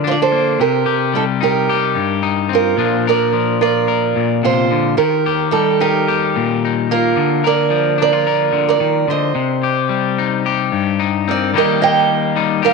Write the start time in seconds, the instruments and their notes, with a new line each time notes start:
Already playing: clean electric guitar D3 F3
0.04 clean electric guitar D4, steel-string acoustic guitar F4 C5
0.11 steel-string acoustic guitar D5
0.22 steel-string acoustic guitar A4 C5
0.32 clean electric guitar A#3
0.60 clean electric guitar C3, steel-string acoustic guitar G4 A#4
0.86 clean electric guitar G4
1.13 clean electric guitar G3, steel-string acoustic guitar D#4 A4
1.41 clean electric guitar D#4, steel-string acoustic guitar G4 A#4
1.69 clean electric guitar G4
1.95 clean electric guitar G2
2.23 clean electric guitar D#4
2.49 clean electric guitar C4
2.53 steel-string acoustic guitar F4 A#4
2.77 clean electric guitar A#2 F3 D4 F4
3.07 clean electric guitar A#4, steel-string acoustic guitar A#4 D5
3.33 clean electric guitar F3
3.61 clean electric guitar F4, steel-string acoustic guitar A#4 D5
3.88 clean electric guitar A#4
4.16 clean electric guitar A#2
4.43 clean electric guitar C3, steel-string acoustic guitar F4 C5
4.71 clean electric guitar D3
4.97 clean electric guitar D#3, steel-string acoustic guitar G4 A#4
5.26 clean electric guitar G4
5.51 clean electric guitar G3, steel-string acoustic guitar D#4 A4
5.80 clean electric guitar D#4, steel-string acoustic guitar G4 A#4
6.08 clean electric guitar G4
6.36 clean electric guitar A#2
6.65 clean electric guitar D#4
6.91 clean electric guitar A#3, steel-string acoustic guitar F4 A#4
7.16 clean electric guitar D3
7.44 clean electric guitar A#4, steel-string acoustic guitar A#4 D5
7.70 clean electric guitar F3
7.98 clean electric guitar D4, steel-string acoustic guitar A#4
8.02 steel-string acoustic guitar D5
8.13 clean electric guitar F4
8.27 clean electric guitar A#4
8.53 clean electric guitar D3
8.69 steel-string acoustic guitar A#4 D5
8.80 clean electric guitar D#3
9.08 clean electric guitar D3, steel-string acoustic guitar C5 D#5
9.35 clean electric guitar C3
9.63 clean electric guitar G4
9.89 clean electric guitar G3
10.18 clean electric guitar D#4
10.46 clean electric guitar G4
10.72 clean electric guitar G2
11.00 clean electric guitar D#4
11.28 clean electric guitar C4, steel-string acoustic guitar A#4 D5
11.54 clean electric guitar D#3 G3 A#3 D#4 G4, steel-string acoustic guitar A#4
11.58 steel-string acoustic guitar D#5
11.81 clean electric guitar A#3, steel-string acoustic guitar D#5 G5
12.36 clean electric guitar G3 D#4
12.63 clean electric guitar G4, steel-string acoustic guitar A#4 F5